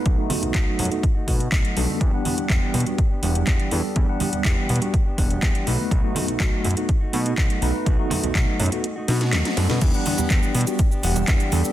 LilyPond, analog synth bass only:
\new Staff \with { instrumentName = "Analog synth bass" } { \clef bass \time 4/4 \key e \minor \tempo 4 = 123 b,,16 r8 b,,16 b,,16 r16 fis,16 r8. b,8 b,,16 r16 b,,16 r16 | e,16 r8 e,16 e,16 r16 b,16 r8. e,,8 e,16 r16 e,16 r16 | e,16 r8 e,16 e,16 r16 b,16 r8. e,,8 e,16 r16 b,,16 r16 | b,,16 r8 b,,16 b,,16 r16 fis,16 r8. b,8 b,,16 r16 b,,16 r16 |
b,,16 r8 b,,16 b,,16 r16 fis,16 r8. b,8 dis,16 r16 fis,16 b,16 | e,16 r8 e,16 e,16 r16 b,16 r8. e,,8 e,16 r16 e,16 r16 | }